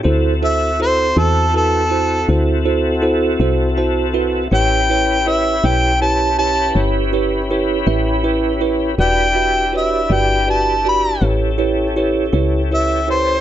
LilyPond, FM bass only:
\new Staff \with { instrumentName = "FM bass" } { \clef bass \time 12/8 \key a \mixolydian \tempo 4. = 54 d,4. e,4. d,4. c,4. | a,,4. b,,4. g,,4. a,,4. | e,,4. g,,4. a,,4. cis,4. | }